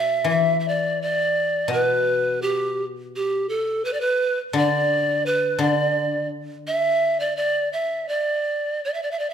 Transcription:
Already playing: B2 E5
0.24 E3
0.29 E5
0.60 E5
0.68 D5
1.02 D5
1.68 B2
1.73 B4
2.42 G4
3.16 G4
3.49 A4
3.85 B4
3.93 D5
4.01 B4
4.53 D3
4.58 D5
5.26 B4
5.59 D3 D5
6.67 E5
7.20 D5
7.37 D5
7.73 E5
8.09 D5
8.85 D5
8.94 E5
9.03 D5
9.11 E5
9.19 D5
9.30 E5

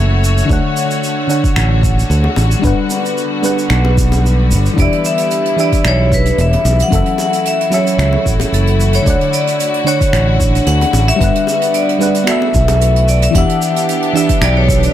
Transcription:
Already playing: F#1 E3 F#3 A3 C#4 F#4 A4 C#5 E5
0.24 shaker
0.38 shaker
0.45 D3 D4
0.49 D2 D3 C#5 F#5, kick, shaker
0.77 shaker
0.91 shaker
1.04 shaker
1.27 D3 D4 C#5 F#5, shaker
1.44 kick, shaker
1.56 A1, finger snap, shaker
1.83 kick, shaker
1.99 shaker
2.10 D2, shaker
2.24 high bongo
2.36 A1, high bongo, shaker
2.52 shaker
2.60 G1 G3 B3 D4
2.64 B4 F#5, kick, shaker
2.90 high bongo, shaker
3.06 shaker
3.18 shaker
3.42 G3 D4 B4 F#5, high bongo, shaker
3.59 shaker
3.70 B1, finger snap, shaker
3.85 high bongo
3.98 kick, shaker
4.12 high bongo, shaker
4.26 shaker
4.51 G1, shaker
4.66 shaker
4.74 E3 D4
4.78 E1 E4 G4 D5 E5, kick, closed hi-hat, shaker
4.92 closed hi-hat
5.05 E5, shaker
5.18 closed hi-hat, shaker
5.31 closed hi-hat, shaker
5.45 closed hi-hat
5.56 E3 D4 G4 E5, shaker
5.61 D5
5.72 kick, closed hi-hat, shaker
5.85 B1 C#5, finger snap, closed hi-hat, shaker
6.12 B4, kick, shaker
6.25 closed hi-hat, shaker
6.38 E1 E5, closed hi-hat, shaker
6.53 closed hi-hat, high bongo
6.65 B1, high bongo, shaker
6.79 F#5, closed hi-hat, shaker
6.88 F#3 C#4
6.92 F#1 E3 A3 E4 F#4 A4 E5, kick, closed hi-hat, shaker
7.06 closed hi-hat
7.18 F#5, high bongo, shaker
7.33 closed hi-hat, shaker
7.45 E5, closed hi-hat, shaker
7.61 closed hi-hat
7.70 F#3 C#4 A4 E5, high bongo, shaker
7.74 C#5
7.87 closed hi-hat, shaker
7.98 C#2, finger snap, closed hi-hat, shaker
8.13 high bongo
8.26 A1, kick, shaker
8.40 closed hi-hat, high bongo, shaker
8.52 F#1 A4, closed hi-hat, shaker
8.67 closed hi-hat
8.80 shaker
8.93 C#5, closed hi-hat, shaker
9.02 D2 D3 D4
9.06 D3 D5 F#5, kick, closed hi-hat, shaker
9.21 closed hi-hat
9.33 D5, shaker
9.47 closed hi-hat, shaker
9.60 closed hi-hat, shaker
9.74 closed hi-hat
9.84 D3 D4 C#5 F#5, shaker
10.01 kick, closed hi-hat, shaker
10.13 A1, finger snap, closed hi-hat, shaker
10.40 kick, shaker
10.55 closed hi-hat, shaker
10.66 D2 F#5, closed hi-hat, shaker
10.81 closed hi-hat, high bongo
10.93 A1, high bongo, shaker
11.08 E5, closed hi-hat, shaker
11.16 G3 B3 D4
11.20 G1 G3 B4 F#5, kick, closed hi-hat, shaker
11.35 closed hi-hat
11.47 high bongo, shaker
11.62 closed hi-hat, shaker
11.74 D5, closed hi-hat, shaker
11.89 closed hi-hat
11.99 G3 D4 B4 F#5, high bongo, shaker
12.14 closed hi-hat, shaker
12.24 E3 B3 F#4, finger snap, closed hi-hat
12.28 A3 A4 E5, shaker
12.42 high bongo
12.54 B1, kick, shaker
12.68 closed hi-hat, high bongo, shaker
12.81 closed hi-hat, shaker
12.96 closed hi-hat
13.08 D5, shaker
13.22 E5, closed hi-hat, shaker
13.31 E3 D4, closed hi-hat
13.35 E1 E3 B3 D4 G4 E5 F#5, kick, shaker
13.49 closed hi-hat
13.62 shaker
13.76 closed hi-hat, shaker
13.89 closed hi-hat, shaker
14.02 closed hi-hat
14.13 E3 D4 G4 E5, shaker
14.29 kick, closed hi-hat, shaker
14.41 B1 D5, finger snap, closed hi-hat, shaker
14.57 C#5
14.69 kick, shaker
14.83 D5, closed hi-hat, shaker

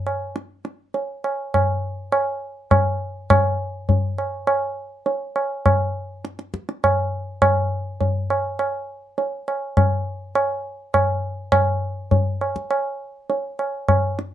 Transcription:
0.07 tabla na
0.36 tabla te
0.65 tabla te
0.94 tabla tin
1.24 tabla na
1.54 tabla na, tabla ge
2.12 tabla na
2.71 tabla na, tabla ge
3.30 tabla na, tabla ge
3.89 tabla tin, tabla ge
4.18 tabla na
4.47 tabla na
5.06 tabla tin
5.36 tabla na
5.66 tabla na, tabla ge
6.25 tabla te
6.39 tabla te
6.54 tabla ke
6.69 tabla te
6.84 tabla na, tabla ge
7.42 tabla na, tabla ge
8.01 tabla tin, tabla ge
8.30 tabla na
8.59 tabla na
9.18 tabla tin
9.48 tabla na
9.77 tabla na, tabla ge
10.35 tabla na
10.94 tabla na, tabla ge
11.52 tabla na, tabla ge
12.11 tabla tin, tabla ge
12.41 tabla na
12.56 tabla ke
12.71 tabla na
13.30 tabla tin
13.59 tabla na
13.88 tabla na, tabla ge
14.19 tabla te

